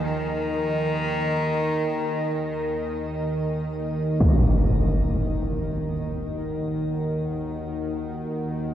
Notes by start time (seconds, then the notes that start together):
Already playing: D#2 D#3 A#4 D#5 G#5
0.04 D#3
4.20 D#2 D#3, impact
5.38 F#5